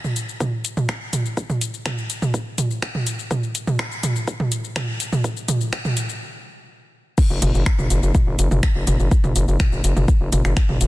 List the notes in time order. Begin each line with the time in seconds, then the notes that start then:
0.04 mid tom, shaker
0.16 closed hi-hat, shaker
0.29 shaker
0.40 kick, mid tom, shaker
0.65 closed hi-hat, shaker
0.77 mid tom, shaker
0.89 finger snap, kick, shaker
1.13 closed hi-hat, mid tom, shaker
1.26 shaker
1.37 kick, shaker
1.50 mid tom, shaker
1.61 closed hi-hat, shaker
1.74 shaker
1.86 finger snap, kick, mid tom, shaker
1.98 shaker
2.10 closed hi-hat, shaker
2.22 mid tom, shaker
2.34 kick, shaker
2.58 closed hi-hat, mid tom, shaker
2.71 shaker
2.82 finger snap, kick, shaker
2.95 mid tom
3.07 closed hi-hat, shaker
3.19 shaker
3.31 kick, mid tom, shaker
3.43 shaker
3.55 closed hi-hat, shaker
3.67 mid tom, shaker
3.79 finger snap, kick, shaker
3.92 shaker
4.03 closed hi-hat, mid tom, shaker
4.16 shaker
4.28 kick, shaker
4.40 mid tom
4.52 closed hi-hat, shaker
4.64 shaker
4.76 finger snap, kick, mid tom, shaker
5.00 closed hi-hat, shaker
5.13 mid tom, shaker
5.24 kick, shaker
5.37 shaker
5.48 closed hi-hat, mid tom, shaker
5.61 shaker
5.73 finger snap, kick, shaker
5.85 mid tom, shaker
5.97 closed hi-hat, shaker
6.09 shaker
7.18 kick, crash, shaker
7.30 F#1, shaker
7.42 F#1, closed hi-hat, mid tom, shaker
7.55 F#1, shaker
7.66 finger snap, kick, shaker
7.79 F#1, mid tom, shaker
7.90 F#1, closed hi-hat, shaker
8.03 F#1, shaker
8.15 kick, mid tom, shaker
8.27 F#1
8.39 F#1, closed hi-hat, shaker
8.51 F#1, mid tom, shaker
8.63 finger snap, kick, shaker
8.75 F#1
8.87 F#1, closed hi-hat, mid tom, shaker
9.00 F#1, shaker
9.11 kick, shaker
9.24 F#1, mid tom, shaker
9.36 F#1, closed hi-hat, shaker
9.48 F#1, shaker
9.60 finger snap, kick, mid tom, shaker
9.72 F#1, shaker
9.84 F#1, closed hi-hat, shaker
9.97 F#1, mid tom, shaker
10.08 kick, shaker
10.21 F#1
10.32 F#1, closed hi-hat, mid tom, shaker
10.45 F#1, finger snap, shaker
10.57 finger snap, kick, shaker
10.69 F#1, mid tom
10.81 F#1, closed hi-hat, shaker